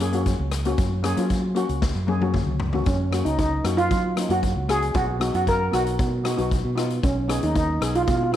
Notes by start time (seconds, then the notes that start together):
Already playing: F#2
0.00 C#4 G#4, closed hi-hat
0.13 A#3 C#4 F#4, closed hi-hat
0.26 kick, closed hi-hat
0.39 C#2
0.52 cross-stick, closed hi-hat
0.65 A#3 C#4 F#4, closed hi-hat
0.78 F#2, kick, closed hi-hat
1.03 A#3 C#4 G#4, cross-stick, closed hi-hat
1.17 F#3 A#3 C#4 F4, closed hi-hat
1.30 kick, closed hi-hat
1.55 A#3 C#4 F#4, closed hi-hat
1.69 C#2, closed hi-hat
1.82 kick, snare
1.95 F#2
2.07 A#3 C#4 G#4, high tom
2.21 A#3 C#4 F#4, high tom
2.34 kick, mid tom
2.47 C#2
2.60 floor tom
2.73 A#3 C#4 F#4, floor tom
2.86 F#2 C#4, kick, closed hi-hat
3.11 A#3 C#4 F#4, cross-stick, closed hi-hat
3.25 C#2 D#4, closed hi-hat
3.39 D#4, kick, closed hi-hat
3.64 F#2 A#3 C#4 F#4, cross-stick, closed hi-hat
3.77 F4, closed hi-hat
3.91 F#3, kick, closed hi-hat
4.16 A#3 C#4 D#4, cross-stick, closed hi-hat
4.29 F#2 A#3 C#4 F#4, closed hi-hat
4.43 kick, closed hi-hat
4.56 C#2
4.68 A#3 C#4 F#4 G#4, cross-stick, closed hi-hat
4.82 closed hi-hat
4.94 B1 F#4, kick, closed hi-hat
5.19 B3 D#4 F#4, cross-stick, closed hi-hat
5.34 F#2 F#4, closed hi-hat
5.47 A#4, kick, closed hi-hat
5.71 B1 B3 D#4 F#4, cross-stick, closed hi-hat
5.87 closed hi-hat
5.99 B2, kick, closed hi-hat
6.24 B3 D#4 F#4, cross-stick, closed hi-hat
6.37 B1 B3 D#4 F#4, closed hi-hat
6.51 kick, closed hi-hat
6.65 B2
6.75 B3 D#4 F4, cross-stick, closed hi-hat
6.90 closed hi-hat
7.03 B1 C#4, kick, closed hi-hat
7.28 B3 D#4 G#4, cross-stick, closed hi-hat
7.43 D#2 D#4, closed hi-hat
7.55 D#4, kick, closed hi-hat
7.81 B1 B3 D#4 G#4, cross-stick, closed hi-hat
7.95 F4, closed hi-hat
8.03 F4
8.07 B2 F4, kick, closed hi-hat
8.17 F4
8.23 F4
8.32 B3 F4